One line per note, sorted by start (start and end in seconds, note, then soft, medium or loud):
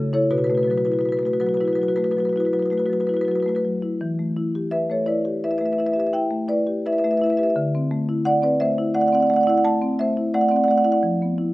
0.00 0.26 F#2 medium
0.00 0.24 C#3 medium
0.00 0.10 F#4 medium
0.00 0.11 A4 medium
0.13 0.31 E4 medium
0.13 0.31 A4 medium
0.13 0.31 C#5 medium
0.31 3.96 B2 medium
0.31 0.39 F#4 medium
0.31 0.38 B4 medium
0.38 0.47 F#4 soft
0.38 0.44 B4 medium
0.44 0.55 F#4 medium
0.44 0.50 B4 medium
0.50 0.79 A3 soft
0.50 0.57 B4 medium
0.55 0.63 F#4 soft
0.55 0.64 B4 medium
0.63 0.70 F#4 medium
0.63 0.71 B4 medium
0.67 0.97 F#3 soft
0.67 0.78 F#4 soft
0.67 0.77 B4 medium
0.77 0.85 F#4 medium
0.77 0.85 B4 medium
0.85 1.45 E4 soft
0.85 0.93 F#4 soft
0.85 0.92 B4 medium
0.92 1.01 F#4 medium
0.92 0.99 B4 medium
0.99 1.09 F#4 soft
0.99 1.05 B4 medium
1.05 1.17 F#4 medium
1.05 1.12 B4 medium
1.12 1.19 B4 medium
1.17 1.25 F#4 soft
1.17 1.27 B4 medium
1.23 1.52 A3 soft
1.23 1.34 F#4 medium
1.23 1.33 B4 medium
1.33 1.41 F#4 soft
1.33 1.40 B4 medium
1.40 1.71 F#3 soft
1.40 1.49 F#4 soft
1.40 1.46 B4 medium
1.46 1.57 F#4 soft
1.46 1.54 B4 medium
1.54 1.65 F#4 medium
1.54 1.61 B4 medium
1.60 1.90 E4 soft
1.60 1.68 B4 medium
1.65 1.73 F#4 soft
1.65 1.75 B4 medium
1.73 1.82 F#4 medium
1.73 1.83 B4 medium
1.78 2.08 F#3 soft
1.78 1.88 F#4 soft
1.83 1.89 B4 medium
1.88 1.97 F#4 medium
1.88 1.96 B4 medium
1.96 2.27 A3 soft
1.96 2.04 F#4 soft
1.96 2.04 B4 medium
2.04 2.12 F#4 medium
2.04 2.11 B4 medium
2.11 2.20 F#4 soft
2.11 2.18 B4 medium
2.17 2.46 F#3 soft
2.17 2.29 F#4 medium
2.17 2.25 B4 medium
2.25 2.33 B4 medium
2.29 2.38 F#4 soft
2.29 2.40 B4 medium
2.36 2.64 E4 soft
2.36 2.45 F#4 medium
2.40 2.46 B4 medium
2.45 2.54 F#4 soft
2.45 2.53 B4 medium
2.53 2.82 F#3 soft
2.53 2.62 F#4 soft
2.53 2.59 B4 medium
2.59 2.70 F#4 soft
2.59 2.66 B4 medium
2.66 2.73 B4 medium
2.70 3.01 A3 soft
2.70 2.78 F#4 medium
2.70 2.79 B4 medium
2.78 2.86 F#4 soft
2.78 2.86 B4 medium
2.86 3.19 F#3 soft
2.86 2.93 F#4 medium
2.86 2.93 B4 medium
2.93 3.01 F#4 soft
2.93 3.00 B4 medium
3.00 3.09 F#4 medium
3.00 3.07 B4 medium
3.07 3.38 E4 soft
3.07 3.17 F#4 soft
3.07 3.14 B4 medium
3.14 3.25 F#4 medium
3.14 3.21 B4 medium
3.21 3.32 F#4 soft
3.21 3.28 B4 medium
3.28 3.56 F#3 soft
3.28 3.40 F#4 medium
3.28 3.35 B4 medium
3.35 3.42 B4 medium
3.40 3.48 F#4 soft
3.40 3.49 B4 medium
3.46 3.75 A3 soft
3.46 3.55 F#4 medium
3.46 3.56 B4 medium
3.55 3.59 F#4 soft
3.55 3.59 B4 medium
3.65 3.93 F#3 soft
3.83 4.00 E4 soft
4.01 7.53 E3 medium
4.19 4.47 A3 soft
4.36 4.65 E4 soft
4.55 5.12 G4 soft
4.71 4.88 B4 medium
4.71 4.89 E5 medium
4.90 5.18 A3 soft
4.90 5.07 A4 soft
4.90 5.08 C#5 medium
5.06 5.35 E4 soft
5.06 5.41 B4 medium
5.06 5.41 D5 medium
5.25 5.53 G4 soft
5.44 5.72 E4 soft
5.44 5.51 B4 medium
5.44 5.51 E5 medium
5.51 5.59 B4 soft
5.51 5.58 E5 medium
5.58 5.89 A3 soft
5.58 5.65 B4 medium
5.58 5.66 E5 medium
5.65 5.72 B4 soft
5.65 5.73 E5 medium
5.72 5.79 B4 soft
5.72 5.80 E5 medium
5.78 6.06 E4 soft
5.78 5.86 B4 soft
5.78 5.86 E5 medium
5.86 5.92 B4 soft
5.86 5.93 E5 medium
5.92 6.24 G4 soft
5.92 5.99 B4 soft
5.92 6.00 E5 medium
5.99 6.06 B4 medium
5.99 6.07 E5 medium
6.06 6.10 B4 soft
6.06 6.11 E5 medium
6.13 6.42 E4 soft
6.13 6.47 E5 medium
6.13 6.48 G5 medium
6.31 6.60 A3 medium
6.48 6.78 E4 soft
6.48 6.83 B4 medium
6.48 6.84 D5 medium
6.67 6.96 G4 soft
6.86 7.14 E4 soft
6.86 6.93 B4 medium
6.86 6.93 E5 medium
6.93 6.99 B4 medium
6.93 6.98 E5 medium
6.98 7.06 B4 medium
6.98 7.04 E5 medium
7.04 7.32 A3 medium
7.04 7.13 B4 medium
7.04 7.11 E5 medium
7.11 7.20 B4 medium
7.11 7.17 E5 medium
7.17 7.26 B4 medium
7.17 7.24 E5 medium
7.22 7.49 E4 medium
7.22 7.30 E5 medium
7.26 7.32 B4 medium
7.30 7.39 B4 soft
7.30 7.37 E5 medium
7.37 7.56 G4 medium
7.37 7.46 B4 medium
7.37 7.43 E5 medium
7.43 7.52 B4 medium
7.43 7.50 E5 medium
7.50 7.54 E5 medium
7.56 10.99 D3 medium
7.75 8.02 C4 soft
7.91 8.19 A3 medium
8.09 8.65 E4 medium
8.25 8.42 D5 medium
8.25 8.43 F#5 loud
8.42 8.71 C4 medium
8.42 8.60 B4 medium
8.42 8.61 D5 medium
8.60 8.89 A3 medium
8.60 8.94 C5 medium
8.60 8.94 E5 medium
8.78 9.07 E4 medium
8.94 9.23 A3 medium
8.94 9.00 D5 medium
8.94 9.01 F#5 medium
9.00 9.07 D5 medium
9.00 9.08 F#5 medium
9.07 9.14 D5 medium
9.07 9.15 F#5 medium
9.13 9.41 C4 medium
9.13 9.20 D5 medium
9.13 9.22 F#5 medium
9.20 9.27 D5 medium
9.20 9.30 F#5 medium
9.27 9.58 A3 soft
9.27 9.34 D5 medium
9.27 9.36 F#5 medium
9.34 9.41 D5 medium
9.34 9.43 F#5 medium
9.41 9.48 D5 medium
9.41 9.50 F#5 medium
9.47 9.75 E4 medium
9.47 9.54 D5 medium
9.47 9.58 F#5 medium
9.54 9.60 D5 medium
9.54 9.62 F#5 medium
9.64 9.92 A3 medium
9.64 9.97 F#5 medium
9.64 9.98 A5 medium
9.82 10.10 C4 medium
9.99 10.27 A3 medium
9.99 10.32 C5 medium
9.99 10.33 E5 medium
10.17 10.45 E4 medium
10.34 10.62 A3 medium
10.34 10.41 D5 medium
10.34 10.41 F#5 medium
10.41 10.49 D5 soft
10.41 10.48 F#5 medium
10.48 10.79 C4 medium
10.48 10.57 D5 medium
10.48 10.56 F#5 medium
10.56 10.64 D5 medium
10.56 10.64 F#5 medium
10.64 10.70 D5 medium
10.64 10.71 F#5 medium
10.68 10.96 A3 medium
10.68 10.77 D5 medium
10.68 10.78 F#5 medium
10.77 10.85 D5 medium
10.77 10.85 F#5 medium
10.85 11.02 E4 medium
10.85 10.92 D5 medium
10.85 10.92 F#5 medium
10.92 10.99 D5 medium
10.92 11.00 F#5 medium
11.03 11.54 F3 medium
11.22 11.49 B3 soft
11.38 11.54 E4 soft